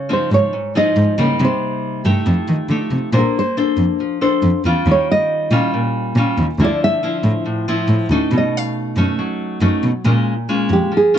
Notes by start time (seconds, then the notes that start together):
Already playing: C#3
0.09 F3 C4 D#4
0.13 C5
0.31 G#2 C#5
0.53 G#2
0.75 F3 C4 D#4 D#5
0.97 G#2
1.18 C#3 G3 A#3 D#4
1.40 C3
1.45 C5
2.05 G2 A3 D#4 G4
2.26 F2 F3
2.48 D#3
2.69 D3 A3 D#4 G4
2.91 C3
3.13 A#2 A#3 D4 A4 C5
3.19 A#4
3.39 C5
3.57 D4 A4 C5
3.77 F2
4.00 F3
4.21 D4 A4 C5
4.43 F2
4.65 E2 G3 C#4 F4
4.86 D#2 D#3
4.91 C#5
5.11 D#5
5.51 A#2 G3 C#4 F4
5.74 A#2
6.16 A#2 G3 C#4 F4
6.38 D#2
6.59 D2 D3 F3 C4 E4
6.64 D5
6.84 E5
7.03 F3 C4 E4
7.24 A2
7.46 A2
7.68 F3 C4 E4
7.88 A2
8.10 D2 A3 C#4 D#4
8.32 B2
8.38 D#5
8.57 F5
8.97 F#2 A3 C#4 D#4
9.19 F#3
9.61 F#2 A3 C#4 D#4
9.83 B2
10.05 A#2 G#3 C#4 F4
10.49 G#3 C#4 F4
10.70 F2 G4
10.92 F3
10.97 G#4
11.14 G#3 C#4 F4